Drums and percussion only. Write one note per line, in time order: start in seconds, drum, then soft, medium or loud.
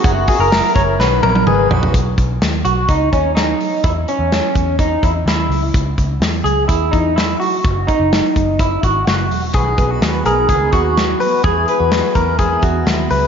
0.04 kick loud
0.04 hi-hat pedal medium
0.04 open hi-hat loud
0.28 kick medium
0.28 hi-hat pedal medium
0.28 open hi-hat medium
0.52 snare loud
0.52 hi-hat pedal medium
0.52 open hi-hat loud
0.76 kick medium
0.76 hi-hat pedal medium
0.76 open hi-hat medium
1.00 snare medium
1.23 high tom medium
1.35 high tom medium
1.47 mid tom medium
1.71 floor tom loud
1.83 floor tom loud
1.94 kick loud
1.94 closed hi-hat medium
2.18 kick medium
2.18 closed hi-hat medium
2.42 snare loud
2.42 closed hi-hat medium
2.65 closed hi-hat medium
2.89 kick medium
2.89 closed hi-hat medium
3.13 kick medium
3.13 closed hi-hat medium
3.37 snare medium
3.37 closed hi-hat medium
3.61 open hi-hat medium
3.84 kick loud
3.84 closed hi-hat medium
4.08 closed hi-hat medium
4.32 snare loud
4.32 closed hi-hat medium
4.55 kick medium
4.55 closed hi-hat medium
4.79 kick medium
4.79 closed hi-hat medium
5.03 kick medium
5.03 closed hi-hat medium
5.28 snare loud
5.28 closed hi-hat medium
5.52 open hi-hat medium
5.74 kick loud
5.74 closed hi-hat medium
5.98 kick medium
5.98 closed hi-hat medium
6.22 snare loud
6.22 closed hi-hat medium
6.46 closed hi-hat medium
6.69 kick medium
6.69 closed hi-hat medium
6.93 kick medium
6.93 closed hi-hat medium
7.18 snare medium
7.18 closed hi-hat medium
7.41 open hi-hat medium
7.65 kick loud
7.65 closed hi-hat medium
7.88 kick medium
7.88 closed hi-hat medium
8.13 snare loud
8.13 closed hi-hat medium
8.36 kick medium
8.36 closed hi-hat medium
8.59 kick medium
8.59 closed hi-hat medium
8.83 kick medium
8.83 closed hi-hat medium
9.07 snare loud
9.07 closed hi-hat medium
9.31 open hi-hat medium
9.54 kick loud
9.54 closed hi-hat medium
9.78 kick medium
9.78 closed hi-hat medium
10.02 snare loud
10.02 closed hi-hat medium
10.25 closed hi-hat medium
10.49 kick medium
10.49 closed hi-hat medium
10.72 kick medium
10.72 closed hi-hat medium
10.97 snare medium
10.97 closed hi-hat medium
11.21 open hi-hat medium
11.44 kick loud
11.44 closed hi-hat medium
11.68 closed hi-hat medium
11.92 snare loud
11.92 closed hi-hat medium
12.15 kick medium
12.15 closed hi-hat medium
12.39 kick medium
12.39 closed hi-hat medium
12.62 kick medium
12.62 closed hi-hat medium
12.87 snare medium
12.87 closed hi-hat medium
13.10 open hi-hat medium